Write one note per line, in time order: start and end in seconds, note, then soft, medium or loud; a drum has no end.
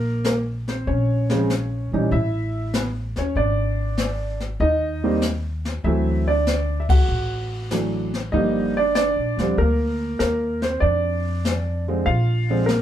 0.00 0.83 A#1 medium
0.00 0.23 A#3 medium
0.00 0.22 A#4 medium
0.24 0.35 A#4 medium
0.24 snare medium
0.24 hi-hat pedal medium
0.28 0.38 A#3 medium
0.68 0.87 C4 medium
0.68 0.88 C5 medium
0.68 snare soft
0.87 1.88 A#1 medium
0.87 1.89 C#4 medium
0.87 1.88 C#5 medium
0.87 brush sweep soft
0.87 kick soft
1.30 1.48 C#3 medium
1.30 1.48 F3 medium
1.30 1.48 G#3 medium
1.30 1.48 C4 medium
1.30 snare soft
1.50 snare medium
1.50 hi-hat pedal soft
1.92 2.10 A#1 medium
1.92 2.10 E3 medium
1.92 2.10 G3 medium
1.92 2.11 C#4 soft
1.92 2.11 D#4 medium
2.11 3.12 A1 medium
2.11 2.70 E4 medium
2.11 2.76 E5 medium
2.11 brush sweep soft
2.11 kick soft
2.73 2.85 B3 medium
2.73 2.84 B4 medium
2.73 snare medium
2.73 hi-hat pedal medium
3.16 3.35 D#2 medium
3.16 3.36 C#5 medium
3.16 snare soft
3.20 3.36 C#4 medium
3.35 4.56 G#1 medium
3.35 4.38 D4 medium
3.35 4.37 D5 medium
3.35 brush sweep soft
3.35 kick soft
3.97 snare medium
3.97 hi-hat pedal medium
4.40 snare soft
4.60 5.80 D#2 medium
4.60 5.19 D#4 medium
4.60 5.19 D#5 loud
4.60 brush sweep soft
4.60 kick soft
5.04 5.21 D#3 medium
5.04 5.21 G3 medium
5.04 5.21 A#3 medium
5.04 5.21 C4 medium
5.22 snare medium
5.22 hi-hat pedal medium
5.65 snare soft
5.84 7.05 D2 medium
5.84 6.24 E3 medium
5.84 6.24 F#3 medium
5.84 6.24 A3 medium
5.84 6.24 C4 medium
5.84 6.25 E4 medium
5.84 6.29 E5 medium
5.84 brush sweep soft
5.84 kick soft
6.28 6.77 D4 medium
6.28 6.82 D5 medium
6.47 snare medium
6.47 hi-hat pedal medium
6.80 6.90 E5 medium
6.89 7.68 F#4 medium
6.89 7.67 F#5 medium
6.89 kick medium
6.89 ride medium
7.08 8.29 A1 medium
7.08 brush sweep soft
7.71 8.10 E3 medium
7.71 8.10 F#3 soft
7.71 8.10 A3 soft
7.71 8.10 D4 medium
7.71 snare medium
7.71 hi-hat pedal medium
8.14 snare soft
8.32 9.12 G1 medium
8.32 8.72 D3 medium
8.32 8.72 F3 medium
8.32 8.72 G3 medium
8.32 8.72 A#3 medium
8.32 8.73 D#4 medium
8.32 8.72 D#5 medium
8.32 brush sweep soft
8.32 kick soft
8.77 8.96 D4 medium
8.77 8.94 D5 medium
8.95 9.55 D4 medium
8.95 9.54 D5 medium
8.95 snare medium
8.95 hi-hat pedal medium
9.16 9.36 A#1 medium
9.37 9.56 D2 medium
9.37 9.56 D3 medium
9.37 9.56 F3 medium
9.37 9.57 G3 medium
9.37 9.56 C4 medium
9.37 snare soft
9.58 10.16 D2 medium
9.58 10.17 A#3 medium
9.58 10.18 A#4 medium
9.58 brush sweep soft
9.58 kick soft
10.19 10.78 D#2 medium
10.19 10.60 A#3 medium
10.19 10.59 A#4 medium
10.19 snare medium
10.19 hi-hat pedal soft
10.62 10.81 C4 medium
10.62 10.82 C5 medium
10.62 snare soft
10.80 12.02 F2 medium
10.80 11.83 D4 medium
10.80 11.82 D5 medium
10.80 brush sweep soft
10.80 kick soft
11.45 snare medium
11.45 hi-hat pedal soft
11.88 12.05 D3 medium
11.88 12.05 F3 soft
11.88 12.05 G#3 medium
11.88 12.05 C4 medium
12.06 12.82 A#1 medium
12.06 12.65 F4 medium
12.06 12.70 F5 medium
12.06 brush sweep soft
12.06 kick soft
12.50 12.67 D3 medium
12.50 12.67 F3 medium
12.50 12.67 G#3 medium
12.50 12.67 C4 medium
12.66 12.82 A#3 medium
12.66 12.82 A#4 medium
12.66 snare medium
12.66 hi-hat pedal soft